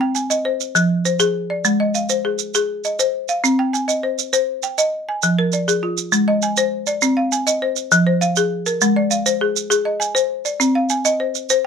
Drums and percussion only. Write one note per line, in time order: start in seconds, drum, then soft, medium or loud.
0.15 maracas medium
0.31 maracas medium
0.61 maracas medium
0.76 maracas medium
1.05 maracas medium
1.20 maracas medium
1.65 maracas medium
1.95 maracas medium
2.09 maracas medium
2.39 maracas medium
2.54 maracas medium
2.84 maracas medium
2.99 maracas medium
3.29 maracas medium
3.44 maracas medium
3.74 maracas medium
3.89 maracas medium
4.19 maracas medium
4.33 maracas medium
4.63 maracas medium
4.78 maracas medium
5.22 maracas medium
5.52 maracas medium
5.68 maracas medium
5.98 maracas medium
6.12 maracas medium
6.42 maracas medium
6.57 maracas medium
6.87 maracas medium
7.02 maracas medium
7.32 maracas medium
7.47 maracas medium
7.76 maracas medium
7.92 maracas medium
8.22 maracas medium
8.36 maracas medium
8.66 maracas medium
8.81 maracas medium
9.11 maracas medium
9.26 maracas medium
9.56 maracas medium
9.71 maracas medium
10.01 maracas medium
10.16 maracas medium
10.45 maracas medium
10.61 maracas medium
10.89 maracas medium
11.05 maracas medium
11.35 maracas medium
11.50 maracas medium